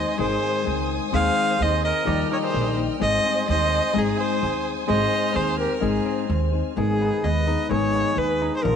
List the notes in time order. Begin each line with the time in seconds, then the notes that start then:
Already playing: D#3 G#3 C4 D#4 G#4 C5 D#5 G#5 D#6
0.17 G#1 G#2 D#3 G#3 C4 D#4 G#4 C5
0.43 C4
0.65 C#2 G#3 C4 D#4 G#4
1.12 D#2 D#3 G#3 C4 D#4 G#4 C5 F5
1.37 C4
1.58 D#2 G#3 C4 D#4 G#4
1.62 C5 D#5
1.84 A#4 D#5
2.04 D#2 D#3 F3 G3 A#3 D#4 G4 D#5
2.09 D#5 G5 F6
2.30 D#4 A#4 C#5
2.42 G#4 C5
2.51 A#1 A#3 D#4 G4 D#5
2.76 A#3 D#4 G4
2.98 G#1 G#2 G#3 C4 D#4 G#4 C5 D#5 G#5 D#6
3.25 C4
3.47 D#2 C4 D#4 G#4 C5 D#5
3.93 G#1 G#2 G#3 C4 D#4 G#4 C5
3.98 G#4
4.18 C4 G#4 C5
4.41 D#2 C4 D#4 G#4 C5
4.87 G#1 G#2 G#3 C4 D#4 G#4 C5 D#5 F6
5.12 C4
5.34 D#2 C4 D#4 G#4 C5
5.58 G4 A#4
5.75 G4 A#4
5.80 G#1 G#2 G#3 C4 D#4 G#4 C5
6.06 C4
6.28 D#2 C4 D#4 G#4 C5
6.52 C4 D#4 G#4 C5
6.76 G#1 G#2 D#3 G#3 B3 D#4 G#4 B4
7.01 B3
7.23 D#2 G#3 B3 G#4 B4 D#5
7.46 G#3 B3 D#4 G#4 B4
7.68 G#1 G#2 D#3 G#3 B3 G#4 B4 C#5
7.73 G#4
7.94 B3
8.15 D#2 G#3 B3 G#4 B4
8.41 D#4
8.56 G#4 C5
8.62 A#1 A#2 F3 A#3 D4 F4 A#4